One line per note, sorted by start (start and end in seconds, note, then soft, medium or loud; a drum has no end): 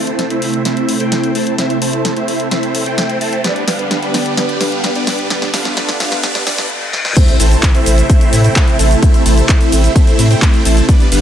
0.00 0.12 A1 medium
0.00 3.41 C3 medium
0.00 0.28 A3 medium
0.00 3.41 A3 medium
0.00 0.28 C4 medium
0.00 0.28 E4 medium
0.00 3.41 E4 medium
0.00 0.28 C5 medium
0.00 0.28 A5 medium
0.00 riser medium
0.07 closed hi-hat soft
0.19 snare soft
0.19 closed hi-hat medium
0.30 0.63 A3 medium
0.30 0.63 C4 medium
0.30 0.63 E4 medium
0.30 0.63 C5 medium
0.30 0.63 E5 medium
0.30 closed hi-hat soft
0.42 0.58 A1 medium
0.42 open hi-hat medium
0.54 closed hi-hat soft
0.65 0.98 A3 medium
0.65 0.98 C4 medium
0.65 0.98 E4 medium
0.65 0.98 C5 medium
0.65 0.98 E5 medium
0.65 snare soft
0.65 closed hi-hat medium
0.77 closed hi-hat soft
0.89 1.05 A2 medium
0.89 open hi-hat loud
1.00 1.32 A3 medium
1.00 1.32 C4 medium
1.00 1.32 E4 medium
1.00 1.32 C5 medium
1.00 1.32 G5 loud
1.00 closed hi-hat soft
1.12 snare medium
1.12 closed hi-hat medium
1.24 closed hi-hat soft
1.35 1.51 A1 loud
1.35 1.56 A3 medium
1.35 1.56 C4 medium
1.35 1.56 E4 medium
1.35 1.56 C5 medium
1.35 1.56 A5 medium
1.35 open hi-hat medium
1.47 closed hi-hat soft
1.58 1.78 A3 medium
1.58 1.78 C4 medium
1.58 1.78 E4 medium
1.58 1.78 C5 medium
1.58 1.78 E5 medium
1.58 snare medium
1.58 closed hi-hat medium
1.70 closed hi-hat soft
1.82 1.98 A1 loud
1.82 2.14 A3 medium
1.82 2.14 C4 medium
1.82 2.14 E4 medium
1.82 2.14 C5 medium
1.82 2.14 A5 medium
1.82 open hi-hat loud
1.93 closed hi-hat soft
2.05 snare medium
2.05 closed hi-hat medium
2.17 2.49 A3 medium
2.17 2.49 C4 medium
2.17 2.49 E4 medium
2.17 2.49 C5 medium
2.17 2.49 E5 medium
2.17 closed hi-hat soft
2.28 2.44 A1 medium
2.28 open hi-hat medium
2.40 closed hi-hat soft
2.51 2.84 A3 medium
2.51 2.84 C4 medium
2.51 2.84 E4 medium
2.51 2.84 C5 medium
2.51 2.84 E5 medium
2.51 snare medium
2.51 closed hi-hat medium
2.63 closed hi-hat soft
2.75 2.91 A2 medium
2.75 open hi-hat loud
2.86 3.18 A3 medium
2.86 3.18 C4 medium
2.86 3.18 E4 medium
2.86 3.18 C5 medium
2.86 3.18 G5 loud
2.86 closed hi-hat soft
2.98 snare medium
2.98 closed hi-hat medium
3.10 closed hi-hat soft
3.21 3.37 A1 loud
3.21 3.42 A3 medium
3.21 3.42 C4 medium
3.21 3.42 E4 medium
3.21 3.42 C5 medium
3.21 3.42 A5 medium
3.21 open hi-hat loud
3.33 closed hi-hat soft
3.44 5.29 D3 medium
3.44 3.64 G3 medium
3.44 3.64 B3 medium
3.44 5.29 B3 medium
3.44 3.64 D4 medium
3.44 5.29 G4 medium
3.44 3.64 B4 medium
3.44 3.64 D5 medium
3.44 snare medium
3.44 closed hi-hat medium
3.56 closed hi-hat soft
3.68 3.84 G1 loud
3.68 4.00 G3 medium
3.68 4.00 B3 medium
3.68 4.00 D4 medium
3.68 4.00 B4 medium
3.68 4.00 F5 medium
3.68 snare medium
3.68 open hi-hat loud
3.79 closed hi-hat soft
3.91 snare medium
3.91 closed hi-hat medium
4.03 4.35 G3 medium
4.03 4.35 B3 medium
4.03 4.35 D4 medium
4.03 4.35 B4 medium
4.03 4.35 D5 medium
4.03 closed hi-hat soft
4.14 snare medium
4.14 open hi-hat loud
4.26 closed hi-hat soft
4.37 4.57 G3 medium
4.37 4.57 B3 medium
4.37 4.57 D4 medium
4.37 4.57 B4 medium
4.37 4.57 D5 medium
4.37 snare medium
4.37 closed hi-hat medium
4.49 closed hi-hat soft
4.61 4.77 G2 medium
4.61 4.93 G3 medium
4.61 4.93 B3 medium
4.61 4.93 D4 medium
4.61 4.93 B4 medium
4.61 4.93 F5 medium
4.61 snare medium
4.61 open hi-hat loud
4.72 closed hi-hat soft
4.84 snare medium
4.84 closed hi-hat medium
4.95 5.28 G3 medium
4.95 5.28 B3 medium
4.95 5.28 D4 medium
4.95 5.28 B4 medium
4.95 5.28 D5 medium
4.95 closed hi-hat soft
5.07 snare medium
5.07 open hi-hat loud
5.19 closed hi-hat soft
5.30 6.69 D3 medium
5.30 5.50 G3 medium
5.30 6.69 A3 medium
5.30 5.50 B3 medium
5.30 5.50 D4 medium
5.30 6.69 F4 medium
5.30 5.50 B4 medium
5.30 5.50 D5 medium
5.30 snare medium
5.30 closed hi-hat medium
5.42 snare medium
5.42 closed hi-hat soft
5.54 5.70 D2 loud
5.54 5.75 G3 medium
5.54 5.75 B3 medium
5.54 5.75 D4 medium
5.54 5.75 B4 medium
5.54 5.75 F5 medium
5.54 snare loud
5.54 open hi-hat loud
5.65 snare medium
5.65 closed hi-hat soft
5.77 5.97 G3 medium
5.77 5.97 B3 medium
5.77 5.97 D4 medium
5.77 5.97 B4 medium
5.77 5.97 D5 loud
5.77 snare medium
5.77 closed hi-hat medium
5.89 snare medium
5.89 closed hi-hat soft
6.00 6.16 D2 loud
6.00 6.22 G3 medium
6.00 6.22 B3 medium
6.00 6.22 D4 medium
6.00 6.22 B4 medium
6.00 6.22 F5 medium
6.00 snare loud
6.00 open hi-hat medium
6.12 snare medium
6.12 closed hi-hat soft
6.23 6.43 G3 medium
6.23 6.43 B3 medium
6.23 6.43 D4 medium
6.23 6.43 B4 medium
6.23 6.43 D5 medium
6.23 snare loud
6.23 closed hi-hat medium
6.23 reverse cymbal medium
6.35 snare medium
6.35 closed hi-hat soft
6.47 6.67 G3 medium
6.47 6.67 B3 medium
6.47 6.67 D4 medium
6.47 6.67 B4 medium
6.47 6.67 D5 medium
6.47 snare loud
6.47 open hi-hat loud
6.58 snare medium
6.58 closed hi-hat soft
6.93 snare medium
7.05 snare medium
7.17 10.85 C3 medium
7.17 7.36 A3 medium
7.17 10.85 A3 medium
7.17 7.36 C4 medium
7.17 7.36 E4 medium
7.17 10.85 E4 loud
7.17 7.36 C5 medium
7.17 7.36 E5 medium
7.17 kick loud
7.17 closed hi-hat medium
7.17 crash loud
7.17 ride medium
7.17 impact medium
7.17 cabasa soft
7.28 closed hi-hat soft
7.28 cabasa soft
7.40 7.56 A1 loud
7.40 7.72 A3 medium
7.40 7.72 C4 medium
7.40 7.72 E4 medium
7.40 7.72 C5 medium
7.40 7.72 A5 medium
7.40 open hi-hat loud
7.40 ride medium
7.40 cabasa medium
7.51 closed hi-hat soft
7.51 cabasa soft
7.63 kick loud
7.63 clap loud
7.63 closed hi-hat medium
7.63 ride medium
7.63 cabasa soft
7.75 8.07 A3 medium
7.75 8.07 C4 medium
7.75 8.07 E4 medium
7.75 8.07 C5 medium
7.75 8.07 E5 medium
7.75 closed hi-hat soft
7.75 cabasa soft
7.86 8.02 A1 loud
7.86 open hi-hat medium
7.86 ride medium
7.86 cabasa medium
7.98 closed hi-hat soft
7.98 cabasa soft
8.10 8.42 A3 medium
8.10 8.42 C4 medium
8.10 8.42 E4 medium
8.10 8.42 C5 medium
8.10 kick loud
8.10 closed hi-hat medium
8.10 ride medium
8.10 cabasa soft
8.21 closed hi-hat soft
8.21 cabasa soft
8.33 8.49 A2 medium
8.33 open hi-hat loud
8.33 ride medium
8.33 cabasa medium
8.44 8.77 A3 medium
8.44 8.77 C4 medium
8.44 8.77 E4 medium
8.44 8.77 C5 medium
8.44 8.77 G5 loud
8.44 closed hi-hat soft
8.44 cabasa soft
8.56 kick loud
8.56 clap loud
8.56 closed hi-hat medium
8.56 ride medium
8.56 cabasa soft
8.68 closed hi-hat soft
8.68 cabasa soft
8.79 8.95 A1 loud
8.79 9.00 A3 medium
8.79 9.00 C4 medium
8.79 9.00 E4 medium
8.79 9.00 C5 medium
8.79 9.00 A5 medium
8.79 open hi-hat medium
8.79 ride medium
8.79 cabasa medium
8.91 closed hi-hat soft
8.91 cabasa soft
9.03 9.22 A3 medium
9.03 9.22 C4 medium
9.03 9.22 E4 medium
9.03 9.22 E5 medium
9.03 kick loud
9.03 closed hi-hat medium
9.03 ride medium
9.03 cabasa soft
9.14 closed hi-hat soft
9.14 cabasa soft
9.26 9.42 A1 loud
9.26 9.58 A3 medium
9.26 9.58 C4 medium
9.26 9.58 E4 medium
9.26 9.58 C5 medium
9.26 9.58 A5 medium
9.26 open hi-hat loud
9.26 ride medium
9.26 cabasa medium
9.37 closed hi-hat soft
9.37 cabasa soft
9.49 kick loud
9.49 clap loud
9.49 closed hi-hat medium
9.49 ride medium
9.49 cabasa soft
9.61 9.93 A3 medium
9.61 9.93 C4 medium
9.61 9.93 E4 medium
9.61 9.93 C5 medium
9.61 9.93 E5 medium
9.61 closed hi-hat soft
9.61 cabasa soft
9.72 9.88 A1 loud
9.72 open hi-hat loud
9.72 ride medium
9.72 cabasa medium
9.84 closed hi-hat soft
9.84 cabasa soft
9.96 10.28 A3 medium
9.96 10.28 C4 medium
9.96 10.28 E4 medium
9.96 10.28 C5 medium
9.96 10.28 E5 medium
9.96 kick loud
9.96 closed hi-hat medium
9.96 ride medium
9.96 cabasa soft
10.07 closed hi-hat soft
10.07 cabasa soft
10.19 10.35 A2 medium
10.19 open hi-hat loud
10.19 ride medium
10.19 cabasa medium
10.30 10.63 A3 medium
10.30 10.63 C4 medium
10.30 10.63 E4 medium
10.30 10.63 C5 medium
10.30 10.63 G5 loud
10.30 closed hi-hat soft
10.30 cabasa soft
10.42 kick loud
10.42 clap loud
10.42 closed hi-hat medium
10.42 ride medium
10.42 cabasa soft
10.54 closed hi-hat soft
10.54 cabasa soft
10.65 10.81 A1 loud
10.65 10.86 A3 medium
10.65 10.86 C4 medium
10.65 10.86 E4 medium
10.65 10.86 C5 medium
10.65 10.86 A5 medium
10.65 open hi-hat medium
10.65 ride medium
10.65 cabasa medium
10.77 closed hi-hat soft
10.77 cabasa soft
10.89 11.21 D3 medium
10.89 11.08 G3 medium
10.89 11.08 B3 medium
10.89 11.21 B3 medium
10.89 11.08 D4 medium
10.89 11.21 G4 medium
10.89 11.08 B4 medium
10.89 11.08 D5 medium
10.89 kick loud
10.89 closed hi-hat medium
10.89 ride medium
10.89 cabasa soft
11.00 closed hi-hat soft
11.00 cabasa soft
11.12 11.21 G1 loud
11.12 11.21 G3 medium
11.12 11.21 B3 medium
11.12 11.21 D4 medium
11.12 11.21 B4 medium
11.12 11.21 F5 medium
11.12 open hi-hat loud
11.12 ride medium
11.12 cabasa medium